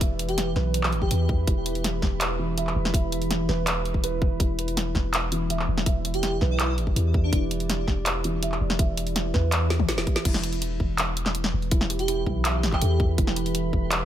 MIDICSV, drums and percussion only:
0, 0, Header, 1, 2, 480
1, 0, Start_track
1, 0, Key_signature, 1, "minor"
1, 0, Tempo, 365854
1, 17, Time_signature, 4, 2, 24, 8
1, 18434, End_track
2, 0, Start_track
2, 0, Title_t, "Drums"
2, 13, Note_on_c, 9, 36, 126
2, 15, Note_on_c, 9, 42, 89
2, 144, Note_off_c, 9, 36, 0
2, 146, Note_off_c, 9, 42, 0
2, 254, Note_on_c, 9, 42, 72
2, 375, Note_on_c, 9, 46, 65
2, 385, Note_off_c, 9, 42, 0
2, 496, Note_on_c, 9, 40, 54
2, 496, Note_on_c, 9, 42, 85
2, 506, Note_off_c, 9, 46, 0
2, 627, Note_off_c, 9, 40, 0
2, 627, Note_off_c, 9, 42, 0
2, 734, Note_on_c, 9, 40, 38
2, 865, Note_off_c, 9, 40, 0
2, 974, Note_on_c, 9, 42, 84
2, 1094, Note_on_c, 9, 39, 121
2, 1105, Note_off_c, 9, 42, 0
2, 1214, Note_on_c, 9, 46, 64
2, 1225, Note_off_c, 9, 39, 0
2, 1335, Note_on_c, 9, 36, 63
2, 1345, Note_off_c, 9, 46, 0
2, 1454, Note_on_c, 9, 42, 85
2, 1466, Note_off_c, 9, 36, 0
2, 1585, Note_off_c, 9, 42, 0
2, 1695, Note_on_c, 9, 36, 114
2, 1826, Note_off_c, 9, 36, 0
2, 1935, Note_on_c, 9, 36, 127
2, 1935, Note_on_c, 9, 42, 82
2, 2066, Note_off_c, 9, 36, 0
2, 2066, Note_off_c, 9, 42, 0
2, 2176, Note_on_c, 9, 42, 71
2, 2300, Note_on_c, 9, 46, 64
2, 2307, Note_off_c, 9, 42, 0
2, 2419, Note_on_c, 9, 40, 53
2, 2419, Note_on_c, 9, 42, 83
2, 2431, Note_off_c, 9, 46, 0
2, 2550, Note_off_c, 9, 40, 0
2, 2550, Note_off_c, 9, 42, 0
2, 2655, Note_on_c, 9, 36, 67
2, 2657, Note_on_c, 9, 40, 37
2, 2786, Note_off_c, 9, 36, 0
2, 2788, Note_off_c, 9, 40, 0
2, 2898, Note_on_c, 9, 39, 123
2, 2898, Note_on_c, 9, 42, 82
2, 3029, Note_off_c, 9, 39, 0
2, 3029, Note_off_c, 9, 42, 0
2, 3379, Note_on_c, 9, 42, 81
2, 3503, Note_on_c, 9, 39, 38
2, 3510, Note_off_c, 9, 42, 0
2, 3634, Note_off_c, 9, 39, 0
2, 3742, Note_on_c, 9, 40, 53
2, 3742, Note_on_c, 9, 46, 35
2, 3854, Note_on_c, 9, 36, 122
2, 3863, Note_on_c, 9, 42, 80
2, 3874, Note_off_c, 9, 40, 0
2, 3874, Note_off_c, 9, 46, 0
2, 3985, Note_off_c, 9, 36, 0
2, 3994, Note_off_c, 9, 42, 0
2, 4098, Note_on_c, 9, 42, 66
2, 4219, Note_on_c, 9, 46, 65
2, 4229, Note_off_c, 9, 42, 0
2, 4337, Note_on_c, 9, 40, 51
2, 4337, Note_on_c, 9, 42, 79
2, 4350, Note_off_c, 9, 46, 0
2, 4469, Note_off_c, 9, 40, 0
2, 4469, Note_off_c, 9, 42, 0
2, 4578, Note_on_c, 9, 40, 36
2, 4709, Note_off_c, 9, 40, 0
2, 4815, Note_on_c, 9, 39, 125
2, 4815, Note_on_c, 9, 42, 78
2, 4946, Note_off_c, 9, 39, 0
2, 4946, Note_off_c, 9, 42, 0
2, 5057, Note_on_c, 9, 46, 64
2, 5174, Note_on_c, 9, 36, 62
2, 5188, Note_off_c, 9, 46, 0
2, 5296, Note_on_c, 9, 42, 77
2, 5305, Note_off_c, 9, 36, 0
2, 5427, Note_off_c, 9, 42, 0
2, 5532, Note_on_c, 9, 36, 113
2, 5664, Note_off_c, 9, 36, 0
2, 5772, Note_on_c, 9, 36, 117
2, 5775, Note_on_c, 9, 42, 77
2, 5903, Note_off_c, 9, 36, 0
2, 5906, Note_off_c, 9, 42, 0
2, 6018, Note_on_c, 9, 42, 63
2, 6140, Note_on_c, 9, 46, 68
2, 6149, Note_off_c, 9, 42, 0
2, 6260, Note_on_c, 9, 40, 53
2, 6260, Note_on_c, 9, 42, 75
2, 6271, Note_off_c, 9, 46, 0
2, 6391, Note_off_c, 9, 40, 0
2, 6391, Note_off_c, 9, 42, 0
2, 6493, Note_on_c, 9, 36, 64
2, 6500, Note_on_c, 9, 40, 38
2, 6624, Note_off_c, 9, 36, 0
2, 6631, Note_off_c, 9, 40, 0
2, 6739, Note_on_c, 9, 39, 119
2, 6739, Note_on_c, 9, 42, 75
2, 6870, Note_off_c, 9, 39, 0
2, 6870, Note_off_c, 9, 42, 0
2, 6979, Note_on_c, 9, 42, 63
2, 7110, Note_off_c, 9, 42, 0
2, 7218, Note_on_c, 9, 42, 78
2, 7339, Note_on_c, 9, 39, 36
2, 7349, Note_off_c, 9, 42, 0
2, 7470, Note_off_c, 9, 39, 0
2, 7577, Note_on_c, 9, 40, 52
2, 7577, Note_on_c, 9, 46, 38
2, 7693, Note_on_c, 9, 36, 115
2, 7693, Note_on_c, 9, 42, 80
2, 7709, Note_off_c, 9, 40, 0
2, 7709, Note_off_c, 9, 46, 0
2, 7824, Note_off_c, 9, 36, 0
2, 7824, Note_off_c, 9, 42, 0
2, 7936, Note_on_c, 9, 42, 64
2, 8054, Note_on_c, 9, 46, 69
2, 8067, Note_off_c, 9, 42, 0
2, 8173, Note_on_c, 9, 40, 53
2, 8173, Note_on_c, 9, 42, 76
2, 8186, Note_off_c, 9, 46, 0
2, 8304, Note_off_c, 9, 40, 0
2, 8304, Note_off_c, 9, 42, 0
2, 8412, Note_on_c, 9, 40, 37
2, 8543, Note_off_c, 9, 40, 0
2, 8654, Note_on_c, 9, 39, 114
2, 8654, Note_on_c, 9, 42, 77
2, 8785, Note_off_c, 9, 39, 0
2, 8785, Note_off_c, 9, 42, 0
2, 8894, Note_on_c, 9, 46, 70
2, 9013, Note_on_c, 9, 36, 60
2, 9025, Note_off_c, 9, 46, 0
2, 9136, Note_on_c, 9, 42, 77
2, 9145, Note_off_c, 9, 36, 0
2, 9268, Note_off_c, 9, 42, 0
2, 9372, Note_on_c, 9, 36, 103
2, 9503, Note_off_c, 9, 36, 0
2, 9612, Note_on_c, 9, 36, 116
2, 9613, Note_on_c, 9, 42, 79
2, 9743, Note_off_c, 9, 36, 0
2, 9744, Note_off_c, 9, 42, 0
2, 9854, Note_on_c, 9, 42, 65
2, 9974, Note_on_c, 9, 46, 71
2, 9985, Note_off_c, 9, 42, 0
2, 10096, Note_on_c, 9, 40, 57
2, 10096, Note_on_c, 9, 42, 76
2, 10105, Note_off_c, 9, 46, 0
2, 10228, Note_off_c, 9, 40, 0
2, 10228, Note_off_c, 9, 42, 0
2, 10332, Note_on_c, 9, 36, 60
2, 10335, Note_on_c, 9, 40, 41
2, 10463, Note_off_c, 9, 36, 0
2, 10466, Note_off_c, 9, 40, 0
2, 10575, Note_on_c, 9, 39, 114
2, 10575, Note_on_c, 9, 42, 78
2, 10706, Note_off_c, 9, 39, 0
2, 10706, Note_off_c, 9, 42, 0
2, 10815, Note_on_c, 9, 42, 62
2, 10946, Note_off_c, 9, 42, 0
2, 11054, Note_on_c, 9, 42, 82
2, 11175, Note_on_c, 9, 39, 35
2, 11185, Note_off_c, 9, 42, 0
2, 11307, Note_off_c, 9, 39, 0
2, 11414, Note_on_c, 9, 40, 56
2, 11414, Note_on_c, 9, 46, 41
2, 11534, Note_on_c, 9, 36, 116
2, 11536, Note_on_c, 9, 42, 83
2, 11545, Note_off_c, 9, 40, 0
2, 11545, Note_off_c, 9, 46, 0
2, 11665, Note_off_c, 9, 36, 0
2, 11667, Note_off_c, 9, 42, 0
2, 11775, Note_on_c, 9, 42, 69
2, 11895, Note_on_c, 9, 46, 68
2, 11906, Note_off_c, 9, 42, 0
2, 12015, Note_on_c, 9, 40, 56
2, 12015, Note_on_c, 9, 42, 83
2, 12026, Note_off_c, 9, 46, 0
2, 12146, Note_off_c, 9, 40, 0
2, 12146, Note_off_c, 9, 42, 0
2, 12254, Note_on_c, 9, 36, 62
2, 12256, Note_on_c, 9, 40, 40
2, 12385, Note_off_c, 9, 36, 0
2, 12387, Note_off_c, 9, 40, 0
2, 12494, Note_on_c, 9, 39, 115
2, 12494, Note_on_c, 9, 42, 82
2, 12625, Note_off_c, 9, 39, 0
2, 12625, Note_off_c, 9, 42, 0
2, 12731, Note_on_c, 9, 38, 61
2, 12731, Note_on_c, 9, 46, 69
2, 12850, Note_on_c, 9, 48, 60
2, 12853, Note_on_c, 9, 36, 58
2, 12862, Note_off_c, 9, 38, 0
2, 12862, Note_off_c, 9, 46, 0
2, 12970, Note_on_c, 9, 38, 81
2, 12970, Note_on_c, 9, 42, 83
2, 12981, Note_off_c, 9, 48, 0
2, 12984, Note_off_c, 9, 36, 0
2, 13092, Note_off_c, 9, 38, 0
2, 13092, Note_on_c, 9, 38, 74
2, 13101, Note_off_c, 9, 42, 0
2, 13211, Note_on_c, 9, 36, 102
2, 13211, Note_on_c, 9, 42, 38
2, 13223, Note_off_c, 9, 38, 0
2, 13329, Note_on_c, 9, 38, 91
2, 13342, Note_off_c, 9, 36, 0
2, 13343, Note_off_c, 9, 42, 0
2, 13451, Note_on_c, 9, 36, 122
2, 13451, Note_on_c, 9, 42, 85
2, 13451, Note_on_c, 9, 49, 109
2, 13460, Note_off_c, 9, 38, 0
2, 13570, Note_on_c, 9, 40, 55
2, 13582, Note_off_c, 9, 36, 0
2, 13582, Note_off_c, 9, 42, 0
2, 13582, Note_off_c, 9, 49, 0
2, 13691, Note_on_c, 9, 42, 69
2, 13701, Note_off_c, 9, 40, 0
2, 13809, Note_on_c, 9, 46, 67
2, 13822, Note_off_c, 9, 42, 0
2, 13931, Note_on_c, 9, 42, 84
2, 13941, Note_off_c, 9, 46, 0
2, 14062, Note_off_c, 9, 42, 0
2, 14170, Note_on_c, 9, 36, 64
2, 14301, Note_off_c, 9, 36, 0
2, 14411, Note_on_c, 9, 39, 116
2, 14411, Note_on_c, 9, 42, 86
2, 14542, Note_off_c, 9, 39, 0
2, 14542, Note_off_c, 9, 42, 0
2, 14653, Note_on_c, 9, 42, 69
2, 14771, Note_on_c, 9, 39, 37
2, 14771, Note_on_c, 9, 40, 57
2, 14784, Note_off_c, 9, 42, 0
2, 14888, Note_on_c, 9, 42, 86
2, 14902, Note_off_c, 9, 39, 0
2, 14902, Note_off_c, 9, 40, 0
2, 15010, Note_on_c, 9, 40, 57
2, 15019, Note_off_c, 9, 42, 0
2, 15141, Note_off_c, 9, 40, 0
2, 15251, Note_on_c, 9, 46, 38
2, 15369, Note_on_c, 9, 42, 88
2, 15371, Note_on_c, 9, 36, 126
2, 15382, Note_off_c, 9, 46, 0
2, 15493, Note_on_c, 9, 40, 53
2, 15500, Note_off_c, 9, 42, 0
2, 15502, Note_off_c, 9, 36, 0
2, 15613, Note_on_c, 9, 42, 71
2, 15625, Note_off_c, 9, 40, 0
2, 15733, Note_on_c, 9, 46, 64
2, 15744, Note_off_c, 9, 42, 0
2, 15852, Note_on_c, 9, 42, 85
2, 15864, Note_off_c, 9, 46, 0
2, 15983, Note_off_c, 9, 42, 0
2, 16092, Note_on_c, 9, 36, 66
2, 16223, Note_off_c, 9, 36, 0
2, 16334, Note_on_c, 9, 39, 124
2, 16334, Note_on_c, 9, 42, 84
2, 16465, Note_off_c, 9, 39, 0
2, 16465, Note_off_c, 9, 42, 0
2, 16576, Note_on_c, 9, 40, 54
2, 16576, Note_on_c, 9, 46, 65
2, 16695, Note_on_c, 9, 36, 64
2, 16695, Note_on_c, 9, 39, 40
2, 16708, Note_off_c, 9, 40, 0
2, 16708, Note_off_c, 9, 46, 0
2, 16814, Note_on_c, 9, 42, 86
2, 16826, Note_off_c, 9, 36, 0
2, 16826, Note_off_c, 9, 39, 0
2, 16945, Note_off_c, 9, 42, 0
2, 17054, Note_on_c, 9, 36, 115
2, 17185, Note_off_c, 9, 36, 0
2, 17294, Note_on_c, 9, 36, 127
2, 17295, Note_on_c, 9, 42, 86
2, 17415, Note_on_c, 9, 40, 53
2, 17425, Note_off_c, 9, 36, 0
2, 17426, Note_off_c, 9, 42, 0
2, 17534, Note_on_c, 9, 42, 70
2, 17546, Note_off_c, 9, 40, 0
2, 17659, Note_on_c, 9, 46, 65
2, 17665, Note_off_c, 9, 42, 0
2, 17774, Note_on_c, 9, 42, 82
2, 17790, Note_off_c, 9, 46, 0
2, 17905, Note_off_c, 9, 42, 0
2, 18016, Note_on_c, 9, 36, 68
2, 18147, Note_off_c, 9, 36, 0
2, 18256, Note_on_c, 9, 39, 125
2, 18256, Note_on_c, 9, 42, 82
2, 18387, Note_off_c, 9, 39, 0
2, 18387, Note_off_c, 9, 42, 0
2, 18434, End_track
0, 0, End_of_file